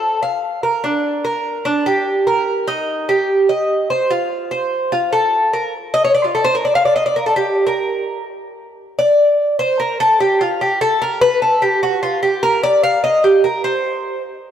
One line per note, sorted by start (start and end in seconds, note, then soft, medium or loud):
0.00 0.21 A4 medium
0.23 0.62 F5 medium
0.63 0.83 A#4 medium
0.84 1.23 D4 medium
1.24 1.64 A#4 medium
1.65 1.85 D4 medium
1.86 2.26 G4 medium
2.27 2.67 A#4 medium
2.67 3.07 D#4 medium
3.09 3.48 G4 medium
3.49 3.89 D#5 medium
3.90 4.10 C5 medium
4.10 4.50 F4 medium
4.51 4.91 C5 medium
4.92 5.12 F4 medium
5.13 5.52 A4 medium
5.53 5.73 A#4 medium
5.94 6.04 D#5 loud
6.04 6.14 C#5 medium
6.15 6.24 D5 medium
6.24 6.34 F4 medium
6.35 6.44 A4 medium
6.44 6.54 C5 loud
6.55 6.65 A#4 medium
6.65 6.75 D5 medium
6.75 6.85 F5 loud
6.85 6.95 D5 medium
6.96 7.05 D#5 medium
7.06 7.16 D5 medium
7.16 7.26 A#4 medium
7.26 7.36 A4 medium
7.36 7.65 G4 medium
7.67 8.24 A#4 medium
8.99 9.56 D5 medium
9.59 9.79 C5 loud
9.80 9.99 A#4 medium
10.00 10.20 A4 loud
10.20 10.40 G4 medium
10.41 10.60 F4 medium
10.61 10.81 G4 medium
10.81 11.01 A4 loud
11.02 11.21 A#4 medium
11.21 11.41 B4 loud
11.42 11.62 A4 medium
11.62 11.82 G4 medium
11.83 12.02 F#4 medium
12.03 12.22 F4 medium
12.23 12.42 G4 medium
12.43 12.63 A#4 loud
12.63 12.83 D5 loud
12.83 13.03 F5 loud
13.04 13.23 D#5 medium
13.24 13.44 G4 medium
13.44 13.64 A#4 medium
13.64 14.21 C5 medium